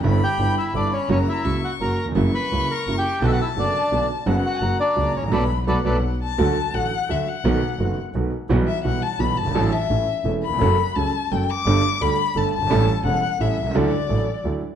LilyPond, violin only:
\new Staff \with { instrumentName = "Violin" } { \time 3/4 \key b \minor \tempo 4 = 171 b''2 b''4 | ais''4 cis'''4. r8 | cis'''2. | a''2. |
fis''4 ais''2 | b''4 fis''4. a''8~ | \key d \major a''4 fis''4 e''8 fis''8~ | fis''4. r4. |
r8 e''8 fis''8 a''8 b''8 a''8~ | a''8 e''4. r8 b''8~ | b''4 a''4 g''8 d'''8~ | d'''4 b''4 a''8 a''8~ |
a''4 fis''4 e''4 | d''2 r4 | }